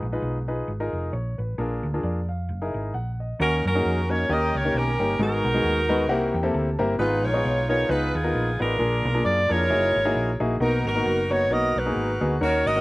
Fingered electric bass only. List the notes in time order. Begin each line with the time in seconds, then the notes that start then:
0.03 A#1
0.22 B1
0.68 G#1
0.93 F1
1.13 A#1
1.39 A1
1.58 A#1
1.83 D2
2.03 F2
2.49 F#1
2.74 G#1
2.94 A#1
3.40 D#2
3.65 F#2
3.85 F2
4.29 D#2
4.55 C#2
4.74 B1
5.00 G1
5.19 G#1
5.45 B1
5.64 D#2
6.09 C2
6.34 E2
6.54 D2
6.80 G1
6.99 G#1
7.25 A#1
7.45 B1
7.89 C#2
8.15 D#2
8.35 A#1
8.61 A1
8.80 A#1
9.05 B1
9.25 F#2
9.50 F2
9.70 F#1
9.96 G#1
10.15 A#1
10.40 A#1
10.60 B1
10.85 G#1
11.05 F#1
11.51 B1
11.76 B1
11.96 G#1
12.21 D2
12.41 D#2
12.66 G#1